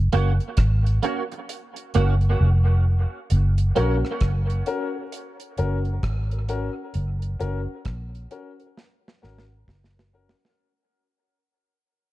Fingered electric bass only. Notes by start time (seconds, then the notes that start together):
0.14 F#1
0.58 G#1
1.96 F#1
2.41 F1
3.32 F#1
3.78 A#1
4.22 F#1
5.59 F#1
6.04 G#1
6.95 F#1
7.41 F#1
7.87 A#1
9.24 G#1
9.69 F#1